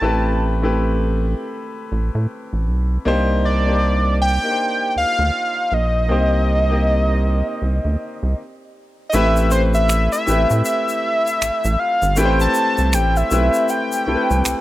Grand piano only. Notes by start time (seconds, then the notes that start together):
Already playing: C4 E4 G4 A#4 B4
0.00 A3 C4 E4 G4 B4
0.62 A3 C4 E4 G4 B4
3.05 A#3 D4 D#4 G4 C5
3.66 A#3 D4 D#4 G4 C5
4.42 A#3 D4 D#4 G4 A#4
4.51 C5
6.08 A#3 C4 D#4 G4 C5
6.70 A#3 C4 D#4 G4 D#5
9.13 A3 C4 E4 G4 B4
10.26 A3 C4 E4 G4 B4
12.16 A3 C4 E4 G4 B4
12.25 C5
13.31 A3 C4 E4 G4 B4
14.06 A3 C4 E4 G4 A4
14.15 B4